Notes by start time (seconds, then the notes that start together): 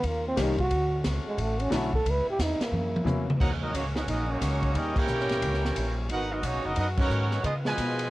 0.02 D#2 D#3 C#4 F4, kick, ride
0.07 A#3
0.28 C4
0.36 C2 D#3 G3 A#3 C#4 G4, kick, snare, hi-hat pedal, ride
0.42 D#4
0.58 F#4, kick, ride
0.69 D2 D3 A3 F#4, kick, ride
1.04 C#2, kick, snare, hi-hat pedal, ride
1.28 G#3
1.38 A1 A3, kick, ride
1.60 C#4, ride
1.70 B1 D3 F#3 A3 C#4 E4, kick, snare, hi-hat pedal, ride
1.75 E4
1.93 A4, kick
2.04 C#2 C#3 G3 B3 E4, kick, ride
2.10 B4
2.30 G4
2.39 E2 D#4, kick, snare, hi-hat pedal, ride
2.60 A#3, muted upright bass stroke, snare, ride
2.72 F#2 F#3 A#3 E4, high tom
2.96 high tom
3.04 E2 E3 F#3 A#3 C#4 E4, hi-hat pedal, mid tom
3.30 mid tom
3.38 D#2 C#3 F#3 A#3 C#4 D#4 F#4 A#4 C#5 F#5, kick, crash
3.61 F#3 A#3 C#4 D#4 F#4 A#4 D#5
3.73 C#2 F#3 A#3 C#4 D#4 F#4 C#5, kick, hi-hat pedal, ride
3.95 F#3 A#3 C#4 D#4 F#4 A#4 D#5, snare
4.07 A#1 F#3 A#3 C#4 D#4 F#4 A#4 D#5, kick, ride
4.29 F#3 A#3 C#4 D#4 F#4 C#5
4.41 C#2, kick, snare, hi-hat pedal, ride
4.62 kick, ride
4.73 D#2 E3 G3 A#3 C#4 D#4 G4 A#4 D#5, kick, ride
4.96 A#3 C#4 E4 G4 A#4 C#5 G5, kick, crash
5.07 B1, hi-hat pedal
5.20 snare
5.29 snare, ride
5.42 C#2, kick, ride
5.54 snare
5.65 snare
5.76 A#1, kick, hi-hat pedal, ride
6.07 G#1 B2 G#3 D#4 F#4, kick, ride
6.11 B3 D#4 A#4 B4 F#5
6.31 F#3 B3 D#4 F#4 A#4 D#5
6.43 B1 A#3 C#4 D#4 F#4 C#5, kick, hi-hat pedal, ride
6.53 G#1
6.64 F#1 F#3 B3 D#4 F#4 A#4 D#5
6.76 F#2 F#3 B3 D#4 F#4 A#4 D#5, kick, ride
6.97 D#3 F#3 B3 C#4 F#4 A#4 C#5, kick, crash
7.09 G#2, hi-hat pedal
7.31 snare
7.42 C#3 D#3 G#3 B3 D#4 F4 G#4 B4 D#5, kick, ride
7.46 B3
7.65 B2 F3 G#3 F4 B4 D#5 G#5, snare
7.77 B2, kick, hi-hat pedal, ride
7.99 ride